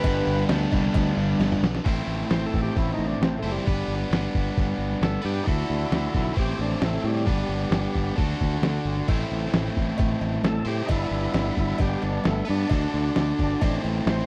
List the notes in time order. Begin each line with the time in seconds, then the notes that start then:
Already playing: G2 D3 G3 B3 D4 G4 B4
0.03 G1 G2, kick, open hi-hat, cowbell
0.26 G1, open hi-hat
0.48 D2 G2 D3 G3 B3 D4, snare, open hi-hat, cowbell
0.72 C2 B3, kick, open hi-hat, cowbell
0.94 D2 G3, kick, open hi-hat, cowbell
1.17 G1 D4, open hi-hat
1.39 G1 B3, snare, open hi-hat, cowbell
1.52 mid tom
1.63 B1 D3, snare, open hi-hat
1.75 snare
1.84 A1 A2 A3 C4 E4 C5, kick, open hi-hat, crash
2.07 A1, open hi-hat
2.31 A1 C5, snare, open hi-hat
2.46 A4
2.54 A1, kick, open hi-hat
2.62 G4
2.76 A1 E4, kick, open hi-hat
2.94 D#4
2.99 A1, open hi-hat
3.08 D4
3.21 A1 C4, snare, open hi-hat
3.39 A3 C5
3.43 F#1 A2 A3 C4 E4, open hi-hat
3.51 G3
3.64 G1 G3 B3 D4 B4, kick, open hi-hat
3.88 G1, open hi-hat
4.11 G1, snare, open hi-hat
4.35 G1, kick, open hi-hat
4.57 G1, kick, open hi-hat
4.78 G1, open hi-hat
4.92 snare
5.01 G1 A4, snare, open hi-hat
5.22 G2 G3 B3 D4 G4 B4, open hi-hat
5.44 D3 D4 D#4 F#4, kick
5.48 D2 E4 A4, open hi-hat
5.70 D2, open hi-hat
5.92 D2, snare, open hi-hat
6.14 B1 E4, kick, open hi-hat
6.33 A1 A2 A3 C4 E4 C5, kick, open hi-hat
6.39 G4
6.59 A1 D4, open hi-hat
6.71 snare
6.82 A1 A3, snare, open hi-hat
7.04 A2 G3, open hi-hat
7.25 G1 G3 B3 D4 B4, kick, open hi-hat
7.49 G1, open hi-hat
7.71 G1, snare, open hi-hat
7.95 G1, kick, open hi-hat
8.16 D2 D3 D4 F#4 A4, kick, open hi-hat
8.41 D2, kick, open hi-hat
8.62 D2, snare, open hi-hat
8.85 G1, open hi-hat
9.07 A1 A2 A3 C4 E4 C5, kick, crash, cowbell
9.31 A1, open hi-hat
9.53 A1, snare, open hi-hat, cowbell
9.77 A1, kick, open hi-hat
9.98 A1, kick, open hi-hat, cowbell
10.21 A1, open hi-hat, cowbell
10.34 snare
10.44 A1 A4, snare, open hi-hat, cowbell
10.65 A2 A3 C4 E4 G4 C5, open hi-hat
10.86 G1 G3 D4 D#4, kick, open hi-hat, cowbell
10.90 B3 E4 B4
11.11 G1, open hi-hat
11.34 G1, snare, open hi-hat, cowbell
11.57 G1 E4, kick, open hi-hat
11.78 G1 G4, kick, open hi-hat, cowbell
12.02 G1 D4, open hi-hat, cowbell
12.24 G1 A3, snare, open hi-hat, cowbell
12.45 B3 D4 B4, open hi-hat
12.49 G2 G3 D4
12.68 D2 D3 D4 F#4 A4, kick, open hi-hat, cowbell
12.94 D2, open hi-hat
13.16 D2, snare, open hi-hat, cowbell
13.39 G1, kick, open hi-hat
13.60 A1 A2 A3 C4 E4, kick, open hi-hat, cowbell
13.64 C5
13.84 A1, open hi-hat, cowbell
14.06 A1 C5, snare, open hi-hat, cowbell